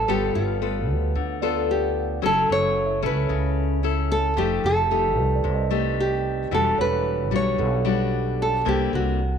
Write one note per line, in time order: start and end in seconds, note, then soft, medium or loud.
0.00 0.31 C#5 soft
0.08 0.33 G1 loud
0.08 1.13 G3 medium
0.08 0.57 B3 medium
0.08 0.57 F4 medium
0.08 0.35 G4 medium
0.08 0.57 A4 medium
0.08 1.49 B4 soft
0.35 0.89 G1 medium
0.35 0.85 F4 medium
0.62 1.38 B3 soft
0.62 1.38 F4 medium
0.62 1.38 A4 medium
0.89 1.13 D2 medium
1.15 2.18 D2 medium
1.15 2.20 D3 medium
1.42 2.18 B3 medium
1.42 2.18 F4 medium
1.42 2.18 A4 medium
1.42 2.18 D5 medium
1.71 2.25 G4 medium
2.22 2.47 F#1 medium
2.22 3.27 F#3 medium
2.22 2.98 C#4 medium
2.22 2.99 E4 medium
2.22 2.99 A4 medium
2.22 2.52 A4 loud
2.49 3.04 F#1 medium
2.49 3.90 A4 soft
2.49 3.01 C#5 loud
2.67 4.06 C#5 soft
2.86 4.22 E5 soft
3.02 3.28 C#2 medium
3.02 3.79 C#4 medium
3.02 3.79 E4 medium
3.02 3.79 A4 medium
3.02 3.81 B4 medium
3.29 4.33 C#2 medium
3.29 4.34 C#3 medium
3.83 4.32 C#4 soft
3.83 4.33 E4 soft
3.83 4.33 A4 medium
4.12 4.38 A4 loud
4.37 4.62 F1 medium
4.37 5.41 F3 medium
4.37 4.71 A3 medium
4.37 4.72 D#4 medium
4.37 4.72 G4 medium
4.37 4.65 G4 medium
4.64 5.18 F1 medium
4.64 5.68 A4 medium
4.91 5.44 A3 soft
4.91 5.44 D#4 soft
4.91 5.44 G4 medium
5.17 5.43 C2 medium
5.17 6.58 B4 soft
5.36 6.74 D5 soft
5.44 6.48 C2 medium
5.44 6.49 C3 medium
5.54 6.53 D#5 soft
5.71 6.47 A3 medium
5.71 6.47 D#4 medium
5.71 6.47 G4 medium
6.00 6.54 G4 medium
6.51 6.76 E1 loud
6.51 7.56 E3 medium
6.51 7.28 G3 medium
6.51 7.28 D4 medium
6.51 7.28 F#4 medium
6.51 6.80 A4 medium
6.78 7.32 E1 medium
6.78 7.35 B4 loud
6.78 8.19 C#5 medium
7.31 7.57 B1 medium
7.31 7.81 G3 medium
7.31 7.81 D4 medium
7.31 7.81 F#4 medium
7.36 8.42 C#5 medium
7.58 8.62 B1 loud
7.58 8.63 B2 medium
7.58 8.89 A4 soft
7.85 8.61 G3 medium
7.85 8.61 D4 medium
7.85 8.62 F#4 medium
8.42 8.68 A4 medium
8.65 8.91 C2 medium
8.65 9.38 C3 medium
8.65 9.19 A#3 medium
8.65 9.19 D4 medium
8.65 9.19 E4 medium
8.65 8.95 G4 medium
8.93 9.38 C2 loud
8.93 9.38 F#4 medium